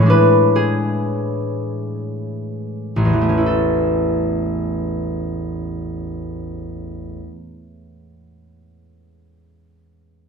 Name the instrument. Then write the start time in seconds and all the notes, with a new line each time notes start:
harp
Already playing: A2 C#5 E5
0.00 E3 G#3
0.06 D4 B4
0.56 G#4
2.96 A1
3.05 E2
3.13 E3
3.21 A3
3.29 C#4
3.38 E4
3.46 A4